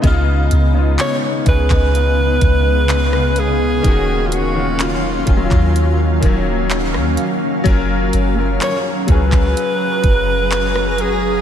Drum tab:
HH |x-x-x-x-x-x-x-x-|x-x-x-x-x-x-x-x-|x-x-x-x-x-x-x-x-|
CP |----x--x----x---|----x--x----x---|----x--x----x---|
SD |-------------r--|-------------r--|-------------r--|
BD |o-----oo--o-----|o-----oo--o-----|o-----oo--o-----|